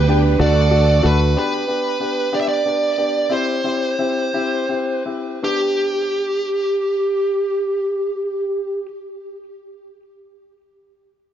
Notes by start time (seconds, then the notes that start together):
Already playing: D2 D3 D4 G4 B4
0.07 B3 D4 G4 G5
0.39 D2 A3 D4 F#4 A4 D5 F#5
0.71 A3 D4 F#4
1.02 D2 A3 D4 F#4 B4
1.36 B3 D4 G4 B4
1.68 B3 D4 G4
2.00 B3 D4 G4
2.32 B3 D4 G4 D5
2.41 E5
2.49 D5
2.66 B3 D4 G4
2.98 B3 D4 G4
3.29 C4 E4 G4 C5
3.64 C4 E4 G4
3.99 C4 E4 G4
4.34 C4 E4 G4
4.69 C4 E4 G4
5.05 C4 E4 G4
5.42 B3 D4 G4